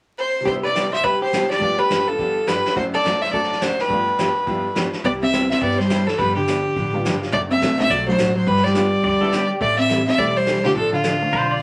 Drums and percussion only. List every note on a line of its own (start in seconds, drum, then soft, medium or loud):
0.46 brush sweep soft
0.46 kick soft
0.75 snare medium
0.75 hi-hat pedal soft
0.93 snare soft
1.04 brush sweep soft
1.04 kick soft
1.33 snare medium
1.33 hi-hat pedal medium
1.50 snare soft
1.61 brush sweep soft
1.61 kick soft
1.90 snare medium
1.90 hi-hat pedal medium
2.19 brush sweep soft
2.19 kick soft
2.48 snare medium
2.48 hi-hat pedal medium
2.66 snare soft
2.76 brush sweep soft
2.76 kick soft
3.05 snare medium
3.05 hi-hat pedal medium
3.23 snare soft
3.33 brush sweep soft
3.33 kick soft
3.43 snare soft
3.53 snare soft
3.62 snare medium
3.62 hi-hat pedal medium
3.79 snare soft
3.90 brush sweep soft
3.90 kick soft
4.19 snare medium
4.19 hi-hat pedal medium
4.47 brush sweep medium
4.47 kick soft
4.76 snare medium
4.76 hi-hat pedal soft
4.93 snare soft
5.04 brush sweep soft
5.04 kick soft
5.33 snare medium
5.33 hi-hat pedal medium
5.51 snare soft
5.62 brush sweep soft
5.62 kick soft
5.71 snare soft
5.80 snare soft
5.90 snare medium
5.90 hi-hat pedal medium
6.08 snare soft
6.19 brush sweep soft
6.19 kick soft
6.48 snare medium
6.48 hi-hat pedal medium
6.76 brush sweep soft
6.76 kick soft
7.05 snare medium
7.05 hi-hat pedal medium
7.23 snare soft
7.33 brush sweep soft
7.33 kick soft
7.62 snare medium
7.62 hi-hat pedal medium
7.79 snare soft
7.90 brush sweep soft
7.90 kick soft
8.18 snare medium
8.18 hi-hat pedal medium
8.46 brush sweep soft
8.46 kick soft
8.56 snare soft
8.66 snare soft
8.75 snare medium
8.75 hi-hat pedal medium
9.03 brush sweep soft
9.03 kick soft
9.32 snare medium
9.32 hi-hat pedal medium
9.61 brush sweep medium
9.61 kick soft
9.89 snare medium
9.89 hi-hat pedal medium
10.07 snare soft
10.18 brush sweep soft
10.18 kick soft
10.46 snare medium
10.46 hi-hat pedal medium
10.64 snare soft
10.75 brush sweep soft
10.75 kick soft
11.04 snare medium
11.04 hi-hat pedal medium
11.32 brush sweep soft
11.32 kick soft